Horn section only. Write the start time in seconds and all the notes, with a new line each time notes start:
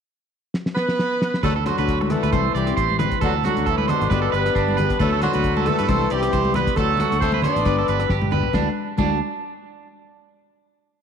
0.75 B3 B4
1.44 A3 A4
1.66 F#3 F#4
2.10 A3 A4
2.57 G3 G4
3.25 F#3 F#4
3.47 F#3 F#4
3.69 E3 E4
3.90 D3 D4
4.33 B3 B4
5.00 A3 A4
5.23 F#3 F#4
5.67 A3 A4
6.12 G3 G4
6.55 B3 B4
6.76 A3 A4
7.20 C4 C5
7.42 D4 D5